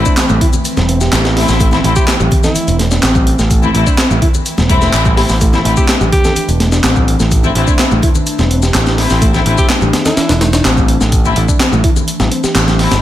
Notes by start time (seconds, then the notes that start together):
Already playing: E3 A3 C4
0.06 D4, kick, shaker
0.17 C4, snare, clap, closed hi-hat, shaker
0.29 A1 A3, high conga, shaker
0.41 E4, kick, closed hi-hat, low conga
0.53 low conga, shaker
0.65 closed hi-hat, shaker
0.77 E1, snare, high conga, shaker
0.89 C4, closed hi-hat
1.01 G4, snare, shaker
1.13 A1, snare, clap, closed hi-hat, shaker
1.25 snare, shaker
1.36 A3 C4 E4, snare, open hi-hat
1.49 A1, snare, shaker
1.60 A3, kick, closed hi-hat, shaker
1.71 A3 C4 E4, snare, low conga, shaker
1.84 A1 A3 C4 E4, closed hi-hat
1.96 G4, kick, shaker
2.08 G4, snare, clap, closed hi-hat, shaker
2.20 A1 G4, high conga, shaker
2.31 kick, closed hi-hat, low conga
2.44 E4 A4, snare, low conga, shaker
2.55 muted picked electric bass stroke, closed hi-hat, shaker
2.67 E1, closed hi-hat, shaker
2.79 A3, snare, closed hi-hat
2.91 D4, snare, shaker
3.03 A1 C4, snare, clap, closed hi-hat, shaker
3.15 kick, high conga, shaker
3.27 closed hi-hat
3.39 A1 A3, snare, shaker
3.51 kick, closed hi-hat, shaker
3.63 A3 C4 E4, low conga, shaker
3.74 A1 A3 C4 E4, closed hi-hat
3.87 D4, kick, shaker
3.98 C4, snare, clap, closed hi-hat, shaker
4.11 A1 A3, high conga, shaker
4.22 E4, kick, closed hi-hat, low conga
4.34 low conga, shaker
4.46 closed hi-hat, shaker
4.58 E1, snare, high conga, shaker
4.70 G3 A3 C4 E4, kick, closed hi-hat
4.82 A3, snare, shaker
4.93 A1, clap, closed hi-hat, shaker
5.05 kick, high conga, shaker
5.17 A3 C4 E4 G4, snare, open hi-hat
5.29 A1, snare, shaker
5.41 A3 D4, kick, closed hi-hat, shaker
5.53 A3 C4 E4, snare, low conga, shaker
5.65 A1 A3 C4 E4, closed hi-hat
5.77 G4, kick, shaker
5.88 G4, snare, clap, closed hi-hat, shaker
6.01 A1 G4, high conga, shaker
6.12 G4, kick, closed hi-hat, low conga
6.25 A4, snare, low conga, shaker
6.36 muted picked electric bass stroke, closed hi-hat, shaker
6.48 E1, closed hi-hat, shaker
6.60 A3, snare, closed hi-hat
6.72 D4, snare, shaker
6.84 A1 C4, snare, clap, closed hi-hat, shaker
6.96 kick, high conga, shaker
7.08 closed hi-hat
7.20 A1 A3, snare, shaker
7.31 kick, closed hi-hat, shaker
7.43 A3 C4 E4, low conga, shaker
7.55 A1 A3 C4 E4, closed hi-hat
7.67 D4, kick, shaker
7.79 C4, snare, clap, closed hi-hat, shaker
7.91 A1 A3, high conga, shaker
8.02 E4, kick, closed hi-hat, low conga
8.15 low conga, shaker
8.27 closed hi-hat, shaker
8.38 E1, snare, high conga, shaker
8.51 C4, closed hi-hat
8.63 G4, snare, shaker
8.74 A1, snare, clap, closed hi-hat, shaker
8.86 snare, shaker
8.98 A3 C4 E4, snare, open hi-hat
9.10 A1, snare, shaker
9.22 A3, kick, closed hi-hat, shaker
9.34 A3 C4 E4, snare, low conga, shaker
9.46 A1 A3 C4 E4, closed hi-hat
9.58 G4, kick, shaker
9.69 G4, snare, clap, closed hi-hat, shaker
9.81 A1 G4, high conga, shaker
9.93 snare, closed hi-hat, low conga
10.05 E4 A4, snare, closed hi-hat, low conga, shaker
10.17 muted picked electric bass stroke, snare, closed hi-hat, shaker
10.29 E1, snare, closed hi-hat, shaker
10.41 A3, snare, closed hi-hat
10.53 D4, snare, closed hi-hat, shaker
10.65 A1 C4, snare, clap, closed hi-hat, shaker
10.77 kick, high conga, shaker
10.88 closed hi-hat
11.01 A1 A3, snare, shaker
11.12 kick, closed hi-hat, shaker
11.25 A3 C4 E4, low conga, shaker
11.36 A1, closed hi-hat
11.48 D4, kick, shaker
11.60 C4, snare, clap, closed hi-hat, shaker
11.72 A1 A3, high conga, shaker
11.84 E4, kick, closed hi-hat, low conga
11.96 low conga, shaker
12.08 closed hi-hat, shaker
12.20 A1, snare, high conga, shaker
12.31 C4, closed hi-hat
12.44 G4, muted picked electric bass stroke, snare, shaker
12.55 A1, snare, clap, closed hi-hat, shaker
12.68 snare, high conga, shaker
12.79 A3 C4 E4, snare, open hi-hat
12.91 G1, snare, closed hi-hat, shaker